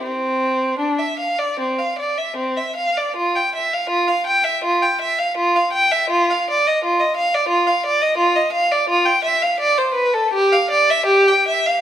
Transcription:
\new Staff \with { instrumentName = "Violin" } { \time 4/4 \key d \minor \tempo 4 = 81 c'4 d'16 e''16 f''16 d''16 c'16 f''16 d''16 e''16 c'16 e''16 f''16 d''16 | f'16 g''16 e''16 f''16 f'16 f''16 g''16 e''16 f'16 g''16 e''16 f''16 f'16 f''16 g''16 e''16 | f'16 f''16 d''16 ees''16 f'16 ees''16 f''16 d''16 f'16 f''16 d''16 ees''16 f'16 ees''16 f''16 d''16 | \key f \lydian f'16 g''16 e''16 f''16 d''16 c''16 b'16 a'16 g'16 f''16 d''16 e''16 g'16 g''16 e''16 f''16 | }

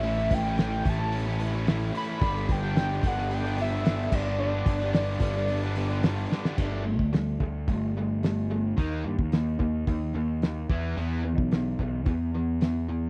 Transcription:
<<
  \new Staff \with { instrumentName = "Analog synth lead" } { \time 4/4 \key g \lydian \tempo 4 = 110 e''8 g''4 a''4 r4 b''8~ | b''8 g''4 fis''8 g''8 e''4 d''8 | d''4 d''2~ d''8 r8 | r1 |
r1 | r1 | }
  \new Staff \with { instrumentName = "Distorted electric guitar" } { \time 4/4 \key g \lydian <a, e a cis' e'>16 <a cis' e'>8 <a cis' e'>16 <a, e a cis' e'>8 <e a cis' e'>16 <a cis' e'>8 <a cis' e'>16 <e a cis' e'>16 <a cis' e'>16 <a, e a cis' e'>8 <e a cis' e'>16 <a cis' e'>16 | <g, d g b d'>16 <g b d'>8 <g b d'>16 <g, d g b d'>8 <d g b d'>16 <g b d'>8 <g b d'>16 <d g b d'>16 <g b d'>16 <g, d g b d'>8 <g, d g b d'>16 <g b d'>16 | <g, d g b d'>16 <g b d'>8 <g b d'>16 <g, d g b d'>8 <d g b d'>16 <g b d'>8 <g b d'>16 <d g b d'>16 <g b d'>16 <g, d g b d'>8 <d g b d'>16 <g b d'>16 | <g a d'>8 <g a>8 <g a>8 <g a>8 <g a>8 <g a>8 <g a>8 <g a>8 |
<ees bes ees'>8 <ees bes>8 <ees bes>8 <ees bes>8 <ees bes>8 <ees bes>8 <ees bes>8 <e b e'>8 | <e b e'>8 <e b>8 <e b>8 <e b>8 <e b>8 <e b>8 <e b>8 <e b>8 | }
  \new Staff \with { instrumentName = "Picked electric bass" } { \clef bass \time 4/4 \key g \lydian a,,8 a,,4 a,,2 r8 | g,,8 g,,4 g,,2 g,,8~ | g,,8 g,,4 g,,2 r8 | g,,8. d,8. d,8 g,,2 |
ees,8 g,16 ees,8. ees,8 ees,8 ees,4 e,8 | e,8. b,,8. b,,8 e,2 | }
  \new DrumStaff \with { instrumentName = "Drums" } \drummode { \time 4/4 hho8 <hho bd>8 <hho sn>8 <hho bd>8 hho8 hho8 <hho sn>8 hho8 | <hho bd>8 <hho bd>8 <hho sn>8 <hho bd>16 sn16 hho8 hho8 <hho sn>8 <cymc bd>8 | r8 <hho bd>8 <hho sn>8 <hho bd>8 hho8 hho8 <hho sn>8 sn16 sn16 | <cymc bd>8. bd16 <hho sn>8 bd8 <hho bd>4 <hho sn>4 |
<hho bd>8. bd16 <hho sn>8 bd8 <hho bd>4 <hho sn>8 bd8 | hho8. bd16 <hho sn>8 bd8 <hho bd>4 <hho sn>4 | }
>>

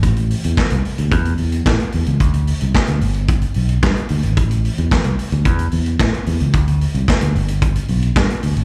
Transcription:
<<
  \new Staff \with { instrumentName = "Fingered electric bass" } { \clef bass \time 4/4 \key a \minor \tempo 4 = 111 a,,8. e,16 r16 c,16 r16 d,16 e,8 e,8 a,16 r16 e,16 cis,16 | d,8. c,16 r16 d,16 g,,4 b,,8 g,16 r16 d,16 gis,,16 | a,,8. e,16 r16 c,16 r16 d,16 e,8 e,8 a,16 r16 e,16 cis,16 | d,8. c,16 r16 d,16 g,,4 b,,8 g,16 r16 d,16 gis,,16 | }
  \new DrumStaff \with { instrumentName = "Drums" } \drummode { \time 4/4 <hh bd>16 hh16 hho16 hh16 <hc bd sn>16 hh16 hho16 hh16 <hh bd>16 hh16 hho16 hh16 <hc bd sn>16 hh16 hho16 hh16 | <hh bd>16 hh16 hho16 hh16 <hc bd sn>16 hh16 hho16 hh16 <hh bd>16 hh16 hho16 hh16 <hc bd sn>16 hh16 hho16 hh16 | <hh bd>16 hh16 hho16 hh16 <hc bd sn>16 hh16 hho16 hh16 <hh bd>16 hh16 hho16 hh16 <hc bd sn>16 hh16 hho16 hh16 | <hh bd>16 hh16 hho16 hh16 <hc bd sn>16 hh16 hho16 hh16 <hh bd>16 hh16 hho16 hh16 <hc bd sn>16 hh16 hho16 hh16 | }
>>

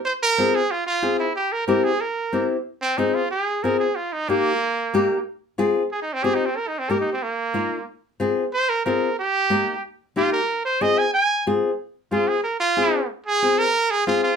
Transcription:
<<
  \new Staff \with { instrumentName = "Trumpet" } { \time 4/4 \key c \phrygian \tempo 4 = 184 c''8 bes'4 aes'8 f'8 f'4 e'8 | g'8 bes'8 bes'8 aes'8 bes'4. r8 | \key f \minor r8 c'8 ees'8 f'8 aes'4 bes'8 aes'8 | f'8 ees'8 bes2. |
r2 \tuplet 3/2 { aes'8 ees'8 c'8 aes'8 ees'8 c'8 } | \tuplet 3/2 { bes'8 ees'8 c'8 bes'8 ees'8 c'8 } bes2 | r2 c''8 bes'8 bes'4 | g'2 r4 f'8 bes'8~ |
bes'8 c''8 ees''8 aes''8 aes''4 r4 | r4 f'8 aes'8 bes'8 f'4. | r8 aes'4 bes'4 aes'8 f'8 f'8 | }
  \new Staff \with { instrumentName = "Nylon-string guitar" } { \time 4/4 \key c \phrygian r4 <c' f' aes'>8 r4. <c' f' aes'>8 r8 | r4 <c' e' g'>8 r4. <c' e' g'>8 r8 | \key f \minor r4 <c' f' aes'>8 r4. <c' f' aes'>8 r8 | r4 <bes ees' g'>8 r4. <bes ees' g'>8 r8 |
r4 <c' f' aes'>8 r4. <c' f' g'>8 r8 | r4 <bes ees' g'>8 r4. <bes ees' f'>8 r8 | r4 <c' f' aes'>8 r4. <c' f' aes'>8 r8 | r4 <bes ees' g'>8 r4. <bes ees' g'>8 r8 |
r4 <c' f' aes'>8 r4. <c' f' aes'>8 r8 | r4 <c' f' aes'>8 r4. <c' f' aes'>8 r8 | r4 <c' f' aes'>8 r4. <c' f' aes'>8 r8 | }
>>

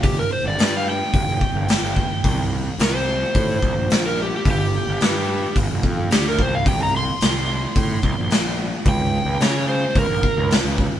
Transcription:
<<
  \new Staff \with { instrumentName = "Electric slide guitar" } { \time 4/4 \key bes \major \tempo 4 = 109 g'16 bes'16 c''16 d''8 f''16 g''2~ g''8~ | g''8 r8 bes'16 c''2 bes'16 g'16 g'16 | g'2 r4 g'16 bes'16 c''16 f''16 | g''16 bes''16 c'''2. r8 |
g''4 des''8 c''8 bes'4 r4 | }
  \new Staff \with { instrumentName = "Picked electric bass" } { \clef bass \time 4/4 \key bes \major f,,8. g,,16 g,4 g,,16 f,,16 r16 g,,8 g,,8 r16 | c,4 c,4 a,8 c,16 bes,,4~ bes,,16 | g,,8. g,,16 g,4 g,,16 f,,16 f,8 d,8 c,8 | c,4 c,4 a,8 c,16 bes,,4~ bes,,16 |
des,8. des,16 des4 des,16 bes,,16 r16 des,8 des,8 r16 | }
  \new DrumStaff \with { instrumentName = "Drums" } \drummode { \time 4/4 <hho bd>4 <hho sn>4 <hho bd>8 bd8 <hho sn>8 bd8 | <hho bd>4 <hho sn>4 <hho bd>8 bd8 <hho sn>4 | <hho bd>4 <hho sn>4 <hho bd>8 bd8 <hho sn>8 bd8 | <hho bd>4 <hho sn>4 <hho bd>8 bd8 <hho sn>4 |
<hho bd>4 <hho sn>4 <hho bd>8 bd8 <hho sn>8 bd8 | }
>>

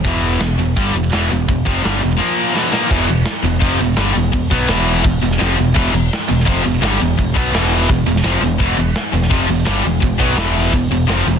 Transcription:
<<
  \new Staff \with { instrumentName = "Distorted electric guitar" } { \clef bass \time 4/4 \key e \minor \tempo 4 = 169 <e, b, e>4 <e, b,>8 <e, b,>8 <g, d g>8 <e, b,>8 <e, b, e>8 <e, b,>8 | <e, b,>8 <f, c f>8 <g, d g>8 <e, b,>8 <ais, eis ais>4 <e, b, e>8 <ais, f ais>8 | <e, b, e>8 <e, b,>8 r8 <e, b,>8 <f, c f>8 <e, b,>8 <g, d g>8 <e, b,>8 | <e, b,>8 <b, fis b>8 <e, b, e>4 <e, b,>8 <e, b,>8 <f, c f>8 <e, b,>8 |
<e, b, e>8 <e, b,>8 r8 <e, b,>8 <f, c f>8 <e, b,>8 <g, d g>8 <e, b,>8 | <e, b,>8 <b, fis b>8 <e, b, e>4 <e, b,>8 <e, b,>8 <f, c f>8 <e, b,>8 | <e, b, e>8 <e, b,>8 r8 <e, b,>8 <f, c f>8 <e, b,>8 <g, d g>8 <e, b,>8 | <e, b,>8 <b, fis b>8 <e, b, e>4 <e, b,>8 <e, b,>8 <f, c f>8 <e, b,>8 | }
  \new Staff \with { instrumentName = "Distorted electric guitar" } { \clef bass \time 4/4 \key e \minor <e, b, e>4 <e, b,>8 <e, b,>8 <g, d g>8 <e, b,>8 <e, b, e>8 <e, b,>8 | <e, b,>8 <f, c f>8 <g, d g>8 <e, b,>8 <ais, eis ais>4 <e, b, e>8 <ais, f ais>8 | <e, b, e>8 <e, b,>8 r8 <e, b,>8 <f, c f>8 <e, b,>8 <g, d g>8 <e, b,>8 | <e, b,>8 <b, fis b>8 <e, b, e>4 <e, b,>8 <e, b,>8 <f, c f>8 <e, b,>8 |
<e, b, e>8 <e, b,>8 r8 <e, b,>8 <f, c f>8 <e, b,>8 <g, d g>8 <e, b,>8 | <e, b,>8 <b, fis b>8 <e, b, e>4 <e, b,>8 <e, b,>8 <f, c f>8 <e, b,>8 | <e, b, e>8 <e, b,>8 r8 <e, b,>8 <f, c f>8 <e, b,>8 <g, d g>8 <e, b,>8 | <e, b,>8 <b, fis b>8 <e, b, e>4 <e, b,>8 <e, b,>8 <f, c f>8 <e, b,>8 | }
  \new Staff \with { instrumentName = "Picked electric bass" } { \clef bass \time 4/4 \key e \minor e,,4 e,,8 e,,8 g,,8 e,,8 e,,8 e,,8 | e,,8 f,,8 g,,8 e,,8 r2 | e,,8 e,,8 r8 e,,8 f,,8 e,,8 g,,8 e,,8 | r8 b,,8 e,,4 e,,8 e,,8 f,,8 e,,8 |
e,,8 e,,8 r8 e,,8 f,,8 e,,8 g,,8 e,,8 | e,,8 b,,8 e,,4 e,,8 e,,8 f,,8 e,,8 | e,,8 e,,8 r8 e,,8 f,,8 e,,8 g,,8 e,,8 | e,,8 b,,8 e,,4 e,,8 e,,8 f,,8 e,,8 | }
  \new DrumStaff \with { instrumentName = "Drums" } \drummode { \time 4/4 <hho bd>4 <hho sn>4 <hho bd>4 <hho sn>4 | <hho bd>8 bd8 <hho sn>4 r4 sn8 sn8 | <cymc bd>8 hho8 <hho sn>8 hho8 <hho bd>8 hho8 <hho sn>8 hho8 | <hho bd>8 <hho bd>8 <hho sn>8 hho8 <hho bd>8 hho16 sn16 <hho sn>8 hho8 |
<cymc bd>8 hho8 <hho sn>8 hho16 sn16 <hho bd>8 hho8 <hho sn>8 hho8 | <hho bd>8 <hho bd>8 <hho sn>8 hho16 sn16 <hho bd>8 hho16 sn16 <hho sn>8 hho8 | <cymc bd>8 hho8 <hho sn>8 hho16 sn16 <hho bd>8 hho8 <hho sn>8 hho8 | <hho bd>8 <hho bd>8 <hho sn>8 hho8 <hho bd>8 hho8 sn8 hho8 | }
>>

